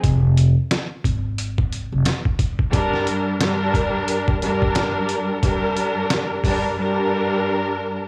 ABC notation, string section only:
X:1
M:4/4
L:1/8
Q:"Swing 16ths" 1/4=89
K:Gphr
V:1 name="String section"
z8 | [G,,G,DB]2 [G,,G,DB]3 [G,,G,DB]3 | [G,,G,DB]3 [G,,G,DB] [G,,G,DB]4 |]